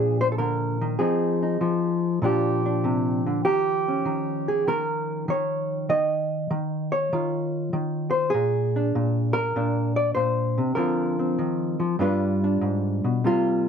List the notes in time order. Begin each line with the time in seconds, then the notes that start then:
Already playing: A#2 F3 D4 F4 G#4
0.21 C5
0.32 A4
0.38 D3 A#4
0.81 D#3
0.99 F3 C4 D#4 G#4
1.43 D#4
1.61 F3
2.22 A#2 F3 D4 F4 G4
2.66 D4
2.84 C3
3.26 D3
3.45 D#3 G4
3.88 C#4
4.05 D#3
4.48 G#4
4.67 D#3 A#4
5.28 D#3 C#5
5.89 D#3 D#5
6.51 D#3
6.92 C#5
7.13 D#3 F4
7.73 D#3
8.11 C5
8.30 G#4
8.34 A#2
8.76 D4
8.95 A#2
9.33 A#4
9.56 A#2 D4
9.96 D5
10.15 A#2 C5
10.58 C3
10.75 D3 F3 C4 F4 A#4
11.19 C4
11.39 D#3
11.80 F3
11.99 G2 G3 D4 F4 B4
12.44 D4
12.61 G#2
13.04 B2
13.24 C3 G3 A#3 F4